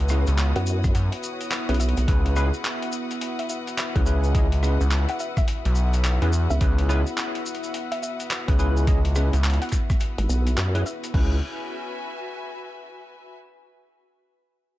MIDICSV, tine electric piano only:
0, 0, Header, 1, 2, 480
1, 0, Start_track
1, 0, Key_signature, 4, "minor"
1, 0, Tempo, 566038
1, 1767, Time_signature, 4, 2, 24, 8
1, 12536, End_track
2, 0, Start_track
2, 0, Title_t, "Tine electric piano"
2, 0, Program_c, 0, 4
2, 83, Note_on_c, 0, 61, 82
2, 83, Note_on_c, 0, 64, 77
2, 83, Note_on_c, 0, 68, 75
2, 83, Note_on_c, 0, 71, 91
2, 237, Note_off_c, 0, 61, 0
2, 237, Note_off_c, 0, 64, 0
2, 237, Note_off_c, 0, 68, 0
2, 237, Note_off_c, 0, 71, 0
2, 1432, Note_on_c, 0, 68, 91
2, 1432, Note_on_c, 0, 71, 113
2, 1433, Note_on_c, 0, 61, 100
2, 1434, Note_on_c, 0, 64, 92
2, 1493, Note_off_c, 0, 61, 0
2, 1493, Note_off_c, 0, 68, 0
2, 1493, Note_off_c, 0, 71, 0
2, 1494, Note_off_c, 0, 64, 0
2, 1762, Note_on_c, 0, 64, 86
2, 1762, Note_on_c, 0, 68, 85
2, 1763, Note_on_c, 0, 61, 94
2, 1763, Note_on_c, 0, 71, 107
2, 1983, Note_off_c, 0, 61, 0
2, 1983, Note_off_c, 0, 64, 0
2, 1983, Note_off_c, 0, 68, 0
2, 1983, Note_off_c, 0, 71, 0
2, 2003, Note_on_c, 0, 61, 96
2, 2003, Note_on_c, 0, 68, 91
2, 2004, Note_on_c, 0, 64, 87
2, 2004, Note_on_c, 0, 71, 107
2, 2101, Note_off_c, 0, 61, 0
2, 2102, Note_off_c, 0, 64, 0
2, 2102, Note_off_c, 0, 68, 0
2, 2102, Note_off_c, 0, 71, 0
2, 3354, Note_on_c, 0, 61, 95
2, 3354, Note_on_c, 0, 64, 85
2, 3354, Note_on_c, 0, 68, 83
2, 3354, Note_on_c, 0, 71, 103
2, 3414, Note_off_c, 0, 61, 0
2, 3414, Note_off_c, 0, 64, 0
2, 3414, Note_off_c, 0, 68, 0
2, 3414, Note_off_c, 0, 71, 0
2, 3444, Note_on_c, 0, 61, 92
2, 3444, Note_on_c, 0, 68, 81
2, 3444, Note_on_c, 0, 71, 98
2, 3445, Note_on_c, 0, 64, 81
2, 3664, Note_off_c, 0, 61, 0
2, 3664, Note_off_c, 0, 68, 0
2, 3664, Note_off_c, 0, 71, 0
2, 3665, Note_off_c, 0, 64, 0
2, 3686, Note_on_c, 0, 68, 80
2, 3686, Note_on_c, 0, 75, 93
2, 3687, Note_on_c, 0, 61, 84
2, 3687, Note_on_c, 0, 64, 78
2, 3783, Note_off_c, 0, 61, 0
2, 3783, Note_off_c, 0, 64, 0
2, 3783, Note_off_c, 0, 68, 0
2, 3783, Note_off_c, 0, 75, 0
2, 3925, Note_on_c, 0, 64, 77
2, 3925, Note_on_c, 0, 71, 90
2, 3926, Note_on_c, 0, 61, 85
2, 3926, Note_on_c, 0, 68, 76
2, 4078, Note_off_c, 0, 64, 0
2, 4078, Note_off_c, 0, 71, 0
2, 4079, Note_off_c, 0, 61, 0
2, 4079, Note_off_c, 0, 68, 0
2, 5274, Note_on_c, 0, 64, 90
2, 5274, Note_on_c, 0, 68, 93
2, 5275, Note_on_c, 0, 71, 109
2, 5276, Note_on_c, 0, 61, 101
2, 5334, Note_off_c, 0, 64, 0
2, 5334, Note_off_c, 0, 68, 0
2, 5335, Note_off_c, 0, 61, 0
2, 5335, Note_off_c, 0, 71, 0
2, 5605, Note_on_c, 0, 61, 99
2, 5605, Note_on_c, 0, 64, 89
2, 5605, Note_on_c, 0, 68, 86
2, 5605, Note_on_c, 0, 71, 108
2, 5824, Note_off_c, 0, 61, 0
2, 5824, Note_off_c, 0, 64, 0
2, 5825, Note_off_c, 0, 68, 0
2, 5825, Note_off_c, 0, 71, 0
2, 5842, Note_on_c, 0, 61, 98
2, 5842, Note_on_c, 0, 64, 88
2, 5842, Note_on_c, 0, 68, 89
2, 5843, Note_on_c, 0, 71, 105
2, 5941, Note_off_c, 0, 61, 0
2, 5941, Note_off_c, 0, 64, 0
2, 5941, Note_off_c, 0, 68, 0
2, 5941, Note_off_c, 0, 71, 0
2, 7191, Note_on_c, 0, 61, 96
2, 7191, Note_on_c, 0, 64, 84
2, 7191, Note_on_c, 0, 68, 85
2, 7191, Note_on_c, 0, 71, 104
2, 7253, Note_off_c, 0, 61, 0
2, 7253, Note_off_c, 0, 64, 0
2, 7253, Note_off_c, 0, 68, 0
2, 7253, Note_off_c, 0, 71, 0
2, 7284, Note_on_c, 0, 61, 90
2, 7284, Note_on_c, 0, 64, 81
2, 7284, Note_on_c, 0, 68, 83
2, 7284, Note_on_c, 0, 71, 101
2, 7504, Note_off_c, 0, 61, 0
2, 7504, Note_off_c, 0, 64, 0
2, 7504, Note_off_c, 0, 68, 0
2, 7504, Note_off_c, 0, 71, 0
2, 7526, Note_on_c, 0, 64, 79
2, 7526, Note_on_c, 0, 68, 79
2, 7527, Note_on_c, 0, 61, 85
2, 7527, Note_on_c, 0, 75, 92
2, 7623, Note_off_c, 0, 64, 0
2, 7623, Note_off_c, 0, 68, 0
2, 7623, Note_off_c, 0, 75, 0
2, 7624, Note_off_c, 0, 61, 0
2, 7765, Note_on_c, 0, 64, 79
2, 7766, Note_on_c, 0, 68, 75
2, 7766, Note_on_c, 0, 71, 92
2, 7767, Note_on_c, 0, 61, 85
2, 7918, Note_off_c, 0, 64, 0
2, 7918, Note_off_c, 0, 68, 0
2, 7918, Note_off_c, 0, 71, 0
2, 7919, Note_off_c, 0, 61, 0
2, 9115, Note_on_c, 0, 61, 99
2, 9115, Note_on_c, 0, 64, 93
2, 9115, Note_on_c, 0, 68, 92
2, 9116, Note_on_c, 0, 71, 109
2, 9174, Note_off_c, 0, 61, 0
2, 9174, Note_off_c, 0, 64, 0
2, 9175, Note_off_c, 0, 68, 0
2, 9175, Note_off_c, 0, 71, 0
2, 9446, Note_on_c, 0, 61, 84
2, 9447, Note_on_c, 0, 64, 79
2, 9447, Note_on_c, 0, 68, 76
2, 9447, Note_on_c, 0, 71, 97
2, 9636, Note_off_c, 0, 61, 0
2, 9637, Note_off_c, 0, 64, 0
2, 9637, Note_off_c, 0, 68, 0
2, 9637, Note_off_c, 0, 71, 0
2, 12536, End_track
0, 0, End_of_file